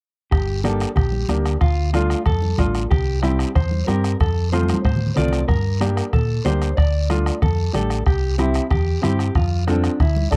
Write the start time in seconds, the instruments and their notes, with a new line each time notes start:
0.31 fingered electric bass G1, clean electric guitar G4, bombo low, bombo rim, low conga, long guiro
0.64 upright piano A#3 D4 G4, clean electric guitar A4, bombo rim, high conga, short guiro
0.80 bombo rim, short guiro
0.96 fingered electric bass A#1, clean electric guitar G4, bombo low, bombo rim, low conga, long guiro
1.12 high conga
1.29 fingered electric bass D2, upright piano A#3 D4 G4, bombo rim, high conga, low conga, short guiro
1.46 bombo rim, short guiro
1.61 fingered electric bass D2, clean electric guitar F4, bombo low, bombo rim, low conga, long guiro
1.93 upright piano A3 D4 F4, clean electric guitar F4, bombo rim, high conga, short guiro
2.10 bombo rim, short guiro
2.26 fingered electric bass F2, clean electric guitar A4, bombo low, bombo rim, low conga, long guiro
2.42 high conga
2.58 fingered electric bass A1, upright piano A3 D4 F4, bombo low, bombo rim, high conga, low conga, short guiro
2.75 bombo rim, short guiro
2.91 fingered electric bass C2, clean electric guitar G4, bombo low, bombo rim, low conga, long guiro
3.22 upright piano G3 C4 E4, clean electric guitar G4, bombo rim, high conga, short guiro
3.39 bombo rim, short guiro
3.55 fingered electric bass E2, clean electric guitar C5, bombo low, bombo rim, low conga, long guiro
3.71 high conga
3.87 fingered electric bass G2, upright piano G3 C4 G4, clean electric guitar A#4, bombo rim, high conga, short guiro
4.04 bombo rim, short guiro
4.20 fingered electric bass F2, clean electric guitar A4, bombo low, bombo rim, low conga, long guiro
4.52 upright piano A3 C4 F4, clean electric guitar C5, bombo rim, high conga, short guiro
4.63 high conga
4.68 bombo rim, short guiro
4.74 high conga
4.84 fingered electric bass A2, clean electric guitar C5, bombo low, bombo rim, long guiro
4.96 low conga
5.07 low conga
5.16 fingered electric bass C2, upright piano A3 C4 F4, clean electric guitar D5, bombo rim, low conga, short guiro
5.28 low conga
5.33 bombo rim, short guiro
5.39 low conga
5.48 fingered electric bass G2, clean electric guitar A#4, bombo low, bombo rim, low conga, long guiro
5.81 upright piano A#3 D4 G4, bombo rim, high conga, short guiro
5.97 bombo rim, short guiro
6.13 fingered electric bass A#2, clean electric guitar A4, bombo low, bombo rim, low conga, long guiro
6.45 fingered electric bass D2, upright piano A#3 D4 G4, clean electric guitar C5, bombo rim, high conga, low conga, short guiro
6.62 bombo rim, short guiro
6.77 fingered electric bass D2, clean electric guitar D5, bombo low, bombo rim, long guiro
7.10 upright piano A3 D4 F4, bombo rim, high conga, short guiro
7.26 bombo rim, short guiro
7.42 fingered electric bass F2, clean electric guitar A4, bombo low, bombo rim, low conga, long guiro
7.73 fingered electric bass A1, upright piano A3 D4 G4, clean electric guitar A4, bombo rim, high conga, low conga, short guiro
7.90 bombo rim, short guiro
8.06 fingered electric bass C2, clean electric guitar G4, bombo low, bombo rim, long guiro
8.38 upright piano C4 E4 G4, clean electric guitar E4, bombo rim, high conga, short guiro
8.54 bombo rim, short guiro
8.71 fingered electric bass E2, clean electric guitar G4, bombo low, bombo rim, low conga, long guiro
9.02 fingered electric bass G2, upright piano C4 E4 G4, clean electric guitar G4, bombo rim, high conga, low conga, short guiro
9.19 bombo rim, short guiro
9.35 fingered electric bass F2, clean electric guitar F4, bombo low, bombo rim, low conga, long guiro
9.67 upright piano C4 F4 A4, clean electric guitar D4, bombo rim, high conga, short guiro
9.84 bombo rim, short guiro
10.00 fingered electric bass D2, clean electric guitar E4, bombo low, bombo rim, low conga, long guiro
10.16 high conga
10.31 fingered electric bass A1, upright piano D4 F#4 A4, clean electric guitar A4, bombo low, bombo rim, low conga, short guiro